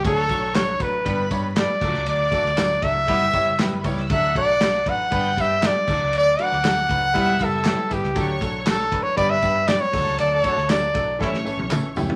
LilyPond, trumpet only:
\new Staff \with { instrumentName = "Trumpet" } { \time 4/4 \key d \major \tempo 4 = 118 a'4 cis''8 b'4 r8 d''4 | d''4. e''2 r8 | e''8 d''4 fis''4 e''8 d''4 | d''8 fis''2 a'4 g'8~ |
g'8 r8 \tuplet 3/2 { a'4 cis''8 } d''16 e''8. d''16 cis''8. | d''16 cis''8. d''4 r2 | }